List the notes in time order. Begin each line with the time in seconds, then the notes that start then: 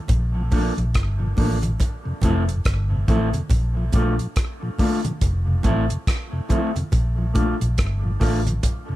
0.08 A#1, kick, closed hi-hat, low conga
0.35 A#2 F3
0.51 F3 A3 A#3 D4 A4, kick, open hi-hat, low conga
0.77 A#1 A#2 F3, closed hi-hat
0.94 G1, kick, cross-stick, closed hi-hat
1.20 A#2 F3
1.36 A1 F3 A3 A#3 D4 A4, kick, open hi-hat, high conga
1.62 A#2 F3, closed hi-hat, high conga
1.80 kick, closed hi-hat, low conga
2.05 F2 C3
2.22 F1 F3 A3 C4 E4 A4, kick, closed hi-hat, low conga
2.48 F2 C3, closed hi-hat
2.65 G1, kick, cross-stick, closed hi-hat
2.91 F2 C3
3.08 A1 F3 A3 C4 E4 A4, kick, closed hi-hat, high conga
3.33 F2 C3, muted clean electric guitar stroke, closed hi-hat, high conga
3.50 A#1, kick, closed hi-hat, low conga
3.77 A#2 F3
3.93 A#1 A3 A#3 D4 F4 A4, kick, closed hi-hat, low conga
4.19 A#2 F3, closed hi-hat
4.36 kick, cross-stick, closed hi-hat
4.62 A#2 F3
4.78 A3 A#3 D4 F4 A4, kick, open hi-hat, high conga
5.05 A#2 F3, closed hi-hat, high conga
5.21 F1, kick, closed hi-hat, low conga
5.48 F2 C3
5.63 A1 F3 A3 C4 E4 A4, kick, closed hi-hat, low conga
5.90 F2 C3, closed hi-hat
6.07 kick, cross-stick, closed hi-hat
6.33 F2 C3
6.49 F3 A3 C4 E4 A4, kick, closed hi-hat, high conga
6.76 F2 C3, muted clean electric guitar stroke, closed hi-hat, high conga
6.92 A#1, kick, closed hi-hat, low conga
7.18 A#2 F3
7.34 A3 A#3 D4 F4 A4, kick, closed hi-hat, low conga
7.60 A#1 A#2 F3, closed hi-hat
7.78 G1, kick, cross-stick, closed hi-hat
8.04 A#2 F3
8.20 A1 A3 A#3 D4 F4 A4, kick, cross-stick, open hi-hat, high conga
8.46 A#2 F3, closed hi-hat, high conga
8.63 kick, closed hi-hat, low conga
8.89 F2 C3